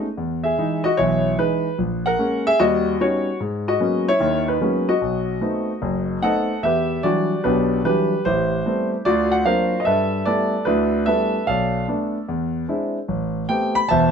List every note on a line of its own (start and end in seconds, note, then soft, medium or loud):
0.17 0.52 E2 medium
0.44 0.82 G#4 medium
0.44 0.85 E5 medium
0.58 0.86 E3 soft
0.58 0.86 G#3 soft
0.58 0.86 D#4 medium
0.84 0.98 F#4 medium
0.84 0.98 D#5 medium
0.97 1.33 B1 medium
0.97 1.33 E3 medium
0.97 1.36 E4 medium
0.97 1.35 C#5 medium
1.38 1.66 E3 soft
1.38 1.66 G#3 soft
1.38 1.66 D#4 medium
1.38 1.76 B4 medium
1.78 2.13 A#1 medium
2.06 2.44 A#4 medium
2.06 2.47 F#5 medium
2.18 2.47 G#3 soft
2.18 2.47 A#3 soft
2.18 2.47 C#4 medium
2.47 2.59 G#4 medium
2.47 2.60 E5 loud
2.60 2.94 D#2 medium
2.60 2.94 G3 medium
2.60 2.97 F#4 medium
2.60 3.01 D#5 medium
3.00 3.28 G3 soft
3.00 3.28 B3 soft
3.00 3.28 C#4 soft
3.00 3.28 D#4 medium
3.00 3.38 F#4 medium
3.00 3.38 C#5 medium
3.40 3.75 G#2 medium
3.68 4.05 F#4 medium
3.68 4.05 D#5 medium
3.80 4.08 F#3 soft
3.80 4.08 G#3 soft
3.80 4.08 A#3 soft
3.80 4.08 B3 soft
3.80 4.08 C#4 soft
4.08 4.45 E4 medium
4.08 4.45 C#5 loud
4.20 4.55 D#2 medium
4.20 4.55 D#3 medium
4.48 4.86 D#4 medium
4.48 4.89 B4 medium
4.61 4.89 F#3 medium
4.61 4.89 G#3 soft
4.61 4.89 A#3 soft
4.61 4.89 B3 soft
4.61 4.89 C#4 medium
4.89 6.19 F#4 medium
4.89 6.19 D#5 medium
5.01 5.36 B1 medium
5.41 5.69 A3 soft
5.41 5.69 B3 soft
5.41 5.70 C4 soft
5.41 5.70 D#4 medium
5.82 6.17 F#1 medium
6.22 6.50 A3 soft
6.22 6.50 B3 soft
6.22 6.50 C4 soft
6.22 6.50 D#4 medium
6.22 6.61 A4 medium
6.22 6.61 D#5 medium
6.22 6.60 F#5 medium
6.63 6.98 E2 medium
6.63 7.03 G4 medium
6.63 7.41 B4 medium
6.63 7.04 E5 medium
7.03 7.31 E3 soft
7.03 7.31 F#3 soft
7.03 7.32 G3 soft
7.03 7.32 D4 medium
7.03 7.81 F#4 medium
7.03 7.44 G4 medium
7.03 7.41 D5 medium
7.44 7.79 B1 medium
7.44 7.79 B2 medium
7.44 7.84 D4 medium
7.44 7.85 G4 medium
7.44 7.81 B4 medium
7.84 8.12 E3 soft
7.84 8.12 F#3 soft
7.84 8.12 G3 soft
7.84 8.13 D4 medium
7.84 8.23 G4 medium
7.84 8.26 B4 medium
8.25 8.60 A1 medium
8.25 9.02 E4 medium
8.25 9.02 G4 medium
8.25 8.88 C5 medium
8.65 8.93 G3 soft
8.65 8.93 A3 soft
8.65 8.93 B3 soft
8.65 8.93 C4 medium
9.05 9.41 D2 medium
9.05 9.83 F4 medium
9.05 9.82 F#4 medium
9.05 9.32 D5 loud
9.32 9.44 F#5 medium
9.45 9.73 F#3 medium
9.45 9.73 A#3 soft
9.45 9.74 C4 soft
9.45 9.74 D4 medium
9.45 9.84 A#4 medium
9.45 9.83 C5 medium
9.45 9.82 F5 medium
9.80 9.85 D#5 medium
9.85 10.21 G2 medium
9.85 10.25 A4 medium
9.85 10.25 B4 medium
9.85 10.23 E5 medium
10.25 10.54 G3 soft
10.25 10.54 A3 soft
10.25 10.54 B3 soft
10.25 10.55 E4 medium
10.25 11.03 A4 medium
10.25 10.64 B4 medium
10.25 10.67 D5 medium
10.65 11.02 D2 medium
10.65 11.44 D4 medium
10.65 11.07 E4 medium
10.65 11.03 B4 medium
11.06 11.35 G3 soft
11.06 11.35 A3 soft
11.06 11.35 B3 soft
11.06 11.35 E4 medium
11.06 11.45 A4 medium
11.06 11.45 B4 medium
11.06 11.48 E5 medium
11.47 11.82 B1 medium
11.47 12.25 A4 medium
11.47 12.25 D5 medium
11.47 11.85 F5 medium
11.88 12.16 A3 medium
11.88 12.16 B3 soft
11.88 12.16 D4 medium
12.28 12.63 E2 medium
12.68 12.97 G#3 medium
12.68 12.97 C4 soft
12.68 12.97 D4 soft
12.68 12.97 E4 medium
13.08 13.44 A1 medium
13.49 13.77 A3 soft
13.49 13.78 B3 soft
13.49 13.78 C4 soft
13.49 13.78 G4 medium
13.49 13.77 G5 medium
13.75 13.88 B5 loud
13.89 14.12 E1 medium
13.89 14.12 E2 medium
13.89 14.12 C5 medium
13.89 14.12 E5 medium
13.89 14.12 A5 medium